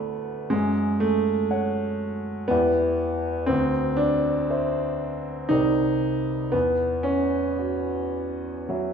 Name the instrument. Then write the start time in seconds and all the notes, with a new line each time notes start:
grand piano
Already playing: D2 A3 B3 E4 D5 F#5
0.50 F#2 G#3
1.00 A3
1.51 C#5 F#5
2.48 E2 B3 E4 G4 D5 F#5
2.53 F#5
3.46 D2 C4
3.97 D4
4.50 C5 E5
5.49 C2 D#4 G4 A#4 C5
5.53 D5
6.52 E2 B3
7.03 C#4
7.58 F#4
8.69 F#3 B4 E5